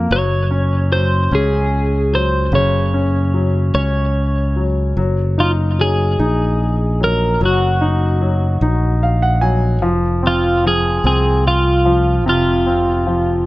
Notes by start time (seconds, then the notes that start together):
Already playing: A#3
0.11 F#1 F#3 C#5
0.51 C#4
0.92 F#3 C5
1.31 C#2 C#4 G#4
2.13 F#3 C5
2.52 F#1 C#3 C#5
2.94 C#4
3.34 F#3
3.74 C#2 C#4 C#5
4.56 F#3
4.97 F#1 F#3
5.38 D#4 F4
5.79 F#3 G#4
6.19 A#1 D#4
7.00 F#3 A#4
7.41 F#1 F#3
7.45 F#4
7.81 D#4
8.21 F#3
8.61 A#1 D#4
9.03 F5
9.22 F#5
9.41 F#3 G#5
9.82 F1 F3
10.23 C4
10.27 F4
10.64 F3 G#4
11.04 C2 C4 G#4
11.48 F4
11.85 F3
12.25 F1 C3 F4
12.66 C4
13.07 F3